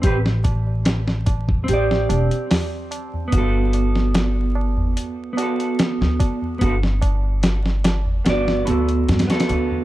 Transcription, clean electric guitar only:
\new Staff \with { instrumentName = "Clean electric guitar" } { \time 4/4 \key g \major \tempo 4 = 73 <c' g' b'>16 r4. r16 <c' g' d''>2 | <b fis' a'>2~ <b fis' a'>8 <b fis' a'>4. | <b fis' a'>16 r4. r16 <b fis' d''>8 <b fis' a'>8. <b fis' a'>8. | }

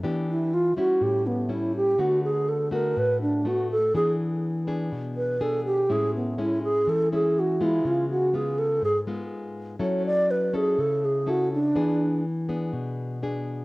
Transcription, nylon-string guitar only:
\new Staff \with { instrumentName = "Nylon-string guitar" } { \time 4/4 \key a \major \tempo 4 = 123 << { <b d' g'>4 r8 <g cis' e'>4. <g cis' e'>4 | <a b fis'>4. <a b fis'>4. <a b fis'>8 r8 | <b d' gis'>4. <b d' gis'>4. <b d' gis'>4 | <gis cis' e'>4 <gis cis' e'>4. <gis cis' e'>4 <gis b f'>8~ |
<gis b f'>4 <gis b eis'>4 r8 <gis b eis'>4. | <cis' e' a'>4. <cis' e' a'>4. <cis' e' a'>8 r8 | <b d' gis'>4 r8 <b d' gis'>4. <b d' gis'>4 | } \\ { e2 a,2 | d2 a,2 | e2 b,2 | a,2 e2 |
cis2 gis,2 | fis2 cis2 | e2 b,2 | } >> }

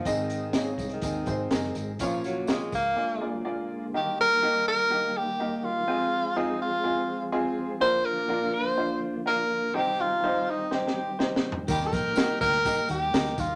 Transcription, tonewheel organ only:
<<
  \new Staff \with { instrumentName = "Tonewheel organ" } { \time 4/4 \key bes \minor \tempo 4 = 124 aes'1 | f'1 | \key ees \major g'1 | aes'1 |
f'1 | g'1~ | g'1 | }
  \new Staff \with { instrumentName = "Tonewheel organ" } { \clef bass \time 4/4 \key bes \minor << { c'1 | bes1 | \key ees \major bes1 | c'1 |
bes1 | c'1 | bes1 | } \\ { <ees aes>1 | <des f>2 <d aes>2 | <ees g>1 | <f aes>1 |
d1 | <ees g>1~ | <ees g>1 | } >> }
>>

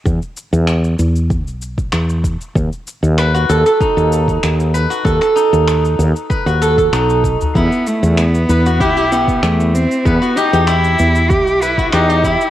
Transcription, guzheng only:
\new Staff \with { instrumentName = "Guzheng" } { \time 4/4 \key e \minor \tempo 4 = 96 r1 | r4 b'16 fis'16 a'16 a'16 dis'4 r8 b'16 fis'16 | a'16 a'16 dis'4 r8 b'16 fis'16 a'16 a'16 dis'4 | e'4 r8 b'16 fis'16 g'16 g'16 e'4 r8 |
b'16 fis'16 g'16 g'16 e'4 r8 b'16 fis'16 g'16 g'16 e'8 | }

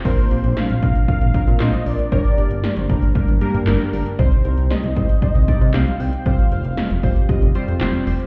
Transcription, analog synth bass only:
\new Staff \with { instrumentName = "Analog synth bass" } { \clef bass \time 4/4 \key bes \mixolydian \tempo 4 = 116 bes,,16 r16 bes,,16 bes,,16 r16 bes,,16 bes,,16 r8 bes,,16 r16 bes,16 bes,,16 r16 bes,,16 r16 | g,,16 r16 g,,16 g,,16 r16 g,,16 g,,16 r8 g,,16 r16 g,16 g,,16 r16 g,,16 r16 | c,16 r16 c,16 c,16 r16 c,16 c,16 r8 c,16 r16 c16 c,16 r16 c,16 r16 | f,,16 r16 f,,16 f,,16 r16 f,,16 f,,16 r8 f,,16 r16 f,16 f,,16 r16 f,,16 r16 | }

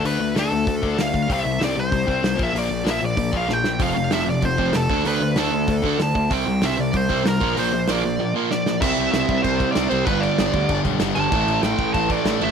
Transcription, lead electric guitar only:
\new Staff \with { instrumentName = "Lead electric guitar" } { \time 4/4 \key c \major \tempo 4 = 192 b'4 a'2 f''4 | e''4 d''8 c''2 e''8 | d''4 e''8 d''4 f''8 g''4 | f''4 e''8 d''8 c''4 a'4 |
b'4 a'2 a''4 | g''4 e''8 d''8 c''4 bes'4 | c''4 d''4. r8 d''4 | e''4 e''4 c''4 d''8 c''8 |
b'8 d''2 r4 a''8~ | a''4 g''4 a''8 d''4 e''8 | }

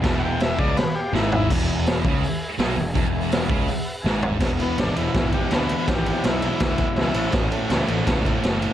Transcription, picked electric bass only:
\new Staff \with { instrumentName = "Picked electric bass" } { \clef bass \time 4/4 \key e \mixolydian \tempo 4 = 164 e,,4. cis,8 r4 gis,,4 | e,,4. cis,8 r4 b,,8 e,,8 | e,,4. cis,8 r4 gis,,4 | e,,4 gis,,8 e,,8 gis,,4 d,4 |
gis,,4 b,,4 d,4 cis,8 a,,8 | a,,4 cis,8 a,,8 cis,4 fis,,4 | }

